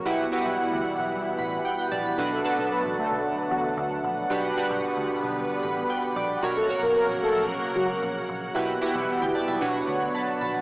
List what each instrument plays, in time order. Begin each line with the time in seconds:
0.06 picked electric bass B1, synth keys B2 E4 F#4 G4 B4 F#5, analog synth pad E3 G3 B3 E4 F#5
0.32 synth keys E4 F#4 G4 B4 F#5
0.46 picked electric bass B1
0.72 picked electric bass D2
0.99 picked electric bass B1
1.38 picked electric bass A1, synth keys B5
1.65 synth keys F#5 G5
1.78 synth keys G5
1.92 picked electric bass A#1, synth keys D5 A5
2.05 synth keys B5
2.18 picked electric bass B1, synth keys B2 D4 F#4 A4 B4 F#5, analog synth pad D3 F#3 A3 F#5
2.31 analog polysynth A3 A4
2.44 synth keys D4 F#4 A4 B4 A5
2.58 picked electric bass B1, analog polysynth B3 B4
2.71 analog polysynth B3 B4
2.84 picked electric bass A1
2.98 analog polysynth A3 A4
3.11 picked electric bass B1
3.51 picked electric bass E2, analog polysynth F#3 F#4
3.77 picked electric bass D2
4.04 picked electric bass A#1
4.30 picked electric bass B1, synth keys B2 D4 F#4 G4 B4 F#5, analog synth pad D3 G3 B3 B4
4.57 synth keys D4 F#4 G4 B4 F#5
4.70 picked electric bass B1
4.97 picked electric bass D2
5.24 picked electric bass B1
5.63 picked electric bass A1, synth keys B5
5.90 synth keys G5
6.16 picked electric bass A#1, synth keys D5
6.43 picked electric bass B1, synth keys B2 F#4 A#4 C#5, analog synth pad C#3 F#3 A#3 A#4 F#5
6.56 analog polysynth A3 A4
6.69 synth keys F#4 A#4 C#5
6.83 picked electric bass B1, analog polysynth A#3 A#4
6.96 analog polysynth A#3 A#4
7.09 picked electric bass A#1
7.23 analog polysynth A3 A4
7.36 picked electric bass A#1
7.75 picked electric bass C#2, analog polysynth F#3 F#4
8.02 picked electric bass A#1
8.29 picked electric bass A#1
8.55 picked electric bass B1, synth keys B2 E4 F#4 G4 B4 F#5, analog synth pad E3 G3 B3 E4
8.81 synth keys E4 F#4 G4 B4 F#5
8.95 picked electric bass B1
9.08 synth keys F#5
9.22 picked electric bass D2, synth keys G5
9.35 synth keys D5 A5
9.48 picked electric bass B1, synth keys E5 B5
9.61 picked electric bass B1, synth keys B2 D4 F#4 B4 C#5 F#5, analog synth pad D3 F#3 C#5
9.88 picked electric bass D2, synth keys F#5
10.15 synth keys A5 B5
10.41 picked electric bass A#1, synth keys A5 B5
10.54 synth keys F#5